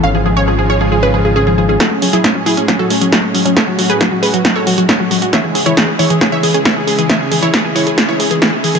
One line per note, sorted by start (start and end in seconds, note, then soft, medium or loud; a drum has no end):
0.04 1.78 G#1 medium
0.04 1.78 C#3 medium
0.04 1.78 F3 medium
0.04 1.78 G#3 medium
0.04 0.09 C#4 medium
0.04 1.78 F4 medium
0.04 1.78 G#4 medium
0.04 0.11 F5 medium
0.15 0.20 F3 medium
0.15 0.22 G#4 medium
0.26 0.33 F3 medium
0.26 0.33 G#4 medium
0.37 0.42 C#4 medium
0.37 0.44 C#5 medium
0.48 0.53 F3 medium
0.48 0.55 G#4 medium
0.59 0.66 F3 medium
0.59 0.66 G#4 medium
0.70 0.75 C#4 medium
0.70 0.77 C#5 medium
0.81 0.86 F3 medium
0.81 0.88 G#4 medium
0.92 0.99 F3 medium
0.92 0.99 G#4 medium
1.03 1.08 C#4 medium
1.03 1.10 B4 medium
1.14 1.19 F3 medium
1.14 1.21 G#4 medium
1.25 1.33 F3 medium
1.25 1.32 G#4 medium
1.36 1.41 C#4 medium
1.36 1.43 G#4 medium
1.47 1.52 F3 medium
1.47 1.54 G#4 medium
1.58 1.66 F3 medium
1.58 1.65 G#4 medium
1.69 1.74 C#4 medium
1.69 1.76 G#4 medium
1.80 5.30 A2 medium
1.80 1.88 F#3 medium
1.80 5.30 F#3 medium
1.80 8.79 G#3 medium
1.80 5.30 C#4 medium
1.80 1.87 F#4 medium
1.80 3.55 G#4 medium
1.80 1.87 A4 medium
1.80 kick loud
1.80 snare soft
1.80 closed hi-hat medium
1.91 1.96 A3 medium
1.91 1.98 C#4 medium
2.02 2.07 F#3 medium
2.02 2.09 C#4 medium
2.02 open hi-hat loud
2.13 2.21 F#3 medium
2.13 2.20 E4 medium
2.13 2.20 G#4 medium
2.13 closed hi-hat medium
2.24 2.29 A3 medium
2.24 2.31 C#4 medium
2.24 kick loud
2.24 snare soft
2.24 closed hi-hat medium
2.35 2.40 F#3 medium
2.35 2.42 C#4 medium
2.46 2.54 F#3 medium
2.46 2.53 E4 medium
2.46 2.53 G#4 medium
2.46 open hi-hat medium
2.57 2.62 A3 medium
2.57 2.64 C#4 medium
2.57 closed hi-hat medium
2.68 2.73 F#3 medium
2.68 2.75 C#4 medium
2.68 kick loud
2.68 snare soft
2.68 closed hi-hat medium
2.79 2.87 F#3 medium
2.79 2.86 F#4 medium
2.79 2.86 A4 medium
2.90 2.95 A3 medium
2.90 2.97 C#4 medium
2.90 open hi-hat loud
3.01 3.06 F#3 medium
3.01 3.08 C#4 medium
3.01 closed hi-hat medium
3.12 3.20 F#3 medium
3.12 3.19 F#4 medium
3.12 3.19 A4 medium
3.12 kick loud
3.12 snare soft
3.12 closed hi-hat medium
3.23 3.29 A3 medium
3.23 3.30 C#4 medium
3.34 3.40 F#3 medium
3.34 3.41 C#4 medium
3.34 open hi-hat loud
3.45 3.53 F#3 medium
3.45 3.52 C#4 medium
3.45 closed hi-hat medium
3.56 3.62 A3 medium
3.56 5.31 F#4 medium
3.56 3.64 A4 medium
3.56 3.63 C#5 medium
3.56 kick loud
3.56 snare soft
3.56 closed hi-hat medium
3.68 3.73 F#3 medium
3.68 3.75 F#4 medium
3.79 3.86 F#3 medium
3.79 3.86 F#4 medium
3.79 open hi-hat loud
3.90 3.95 A3 medium
3.90 3.97 G#4 medium
3.90 3.97 B4 medium
3.90 closed hi-hat medium
4.01 4.06 F#3 medium
4.01 4.08 F#4 medium
4.01 kick loud
4.01 snare soft
4.01 closed hi-hat medium
4.12 4.19 F#3 medium
4.12 4.19 F#4 medium
4.23 4.28 A3 medium
4.23 4.30 G#4 medium
4.23 4.30 B4 medium
4.23 open hi-hat loud
4.34 4.39 F#3 medium
4.34 4.41 F#4 medium
4.34 closed hi-hat medium
4.45 4.52 F#3 medium
4.45 4.52 F#4 medium
4.45 kick loud
4.45 snare medium
4.45 closed hi-hat medium
4.56 4.61 A3 medium
4.56 4.63 A4 medium
4.56 4.63 C#5 medium
4.67 4.72 F#3 medium
4.67 4.74 F#4 medium
4.67 open hi-hat loud
4.78 4.85 F#3 medium
4.78 4.85 F#4 medium
4.78 closed hi-hat medium
4.89 4.94 A3 medium
4.89 4.96 A4 medium
4.89 4.96 C#5 medium
4.89 kick loud
4.89 snare medium
4.89 closed hi-hat medium
5.00 5.05 F#3 medium
5.00 5.07 F#4 medium
5.11 5.19 F#3 medium
5.11 5.18 F#4 medium
5.11 open hi-hat loud
5.22 5.27 A3 medium
5.22 5.29 F#4 medium
5.22 closed hi-hat medium
5.33 8.79 C#3 medium
5.33 5.38 E3 medium
5.33 8.79 E3 medium
5.33 8.79 E4 medium
5.33 8.79 G#4 medium
5.33 5.40 C#5 medium
5.33 5.40 E5 medium
5.33 kick loud
5.33 snare medium
5.33 closed hi-hat medium
5.44 5.52 E3 medium
5.44 5.51 G#4 medium
5.55 5.60 C#4 medium
5.55 5.62 G#4 medium
5.55 open hi-hat loud
5.66 5.71 E3 medium
5.66 5.73 E4 medium
5.66 5.73 C#5 medium
5.66 closed hi-hat medium
5.77 5.84 G#4 medium
5.77 kick loud
5.77 snare medium
5.77 closed hi-hat medium
5.88 5.93 C#4 medium
5.88 5.95 G#4 medium
5.99 6.04 E3 medium
5.99 6.06 E4 medium
5.99 6.06 C#5 medium
5.99 open hi-hat loud
6.10 6.18 E3 medium
6.10 6.17 G#4 medium
6.10 closed hi-hat medium
6.21 6.26 C#4 medium
6.21 6.28 G#4 medium
6.21 kick loud
6.21 snare medium
6.21 closed hi-hat medium
6.32 6.37 E3 medium
6.32 6.39 C#5 medium
6.32 6.39 E5 loud
6.43 6.51 E3 medium
6.43 6.50 G#4 medium
6.43 open hi-hat loud
6.54 6.59 C#4 medium
6.54 6.61 G#4 medium
6.54 closed hi-hat medium
6.65 6.70 E3 medium
6.65 6.72 C#5 medium
6.65 6.72 E5 medium
6.65 kick loud
6.65 snare medium
6.65 closed hi-hat medium
6.76 6.84 E3 medium
6.76 6.83 G#4 medium
6.87 6.92 C#4 medium
6.87 6.94 G#4 medium
6.87 open hi-hat loud
6.98 7.04 E3 medium
6.98 7.05 G#4 medium
6.98 closed hi-hat medium
7.09 7.17 E3 medium
7.09 7.16 C#5 medium
7.09 7.16 E5 loud
7.09 kick loud
7.09 snare medium
7.09 closed hi-hat medium
7.21 7.26 C#4 medium
7.21 7.28 G#4 medium
7.32 7.37 E3 medium
7.32 7.39 G#4 medium
7.32 open hi-hat loud
7.43 7.50 E3 medium
7.43 7.50 E4 medium
7.43 7.50 C#5 medium
7.43 closed hi-hat medium
7.54 7.59 C#4 medium
7.54 7.61 G#4 medium
7.54 kick loud
7.54 snare medium
7.54 closed hi-hat medium
7.65 7.70 E3 medium
7.65 7.72 G#4 medium
7.76 7.83 E3 medium
7.76 7.83 E4 medium
7.76 7.83 C#5 medium
7.76 open hi-hat loud
7.87 7.92 C#4 medium
7.87 7.94 G#4 medium
7.87 closed hi-hat medium
7.98 8.03 E3 medium
7.98 8.05 G#4 medium
7.98 kick loud
7.98 snare medium
7.98 closed hi-hat medium
8.09 8.16 E3 medium
8.09 8.16 E4 medium
8.09 8.16 C#5 medium
8.20 8.25 C#4 medium
8.20 8.27 G#4 medium
8.20 open hi-hat loud
8.31 8.36 E3 medium
8.31 8.38 G#4 medium
8.31 closed hi-hat medium
8.42 8.49 E3 medium
8.42 8.49 E4 medium
8.42 8.49 G#4 medium
8.42 kick loud
8.42 snare medium
8.42 closed hi-hat medium
8.53 8.58 C#4 medium
8.53 8.60 G#4 medium
8.64 8.69 E3 medium
8.64 8.71 G#4 medium
8.64 open hi-hat loud
8.75 8.79 E3 medium
8.75 8.79 G#4 medium
8.75 closed hi-hat medium